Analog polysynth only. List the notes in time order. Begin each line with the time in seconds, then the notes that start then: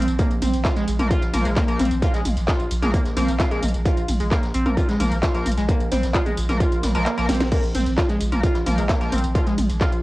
0.99 F3 A#3 A#4
1.33 F3 A#3 A#4
1.68 F3 A#3 A#4
2.82 F3 A#3 A#4
3.17 F3 A#3 A#4
3.51 F3 A#3 A#4
4.66 F3 A#3 A#4
5.00 F3 A#3 A#4
5.34 F3 A#3 A#4
6.49 F3 A#3 A#4
6.95 F3 A#3 A#4
7.18 F3 A#3 A#4
8.32 F3 A#3 A#4
8.66 F3 A#3 A#4
9.01 F3 A#3 A#4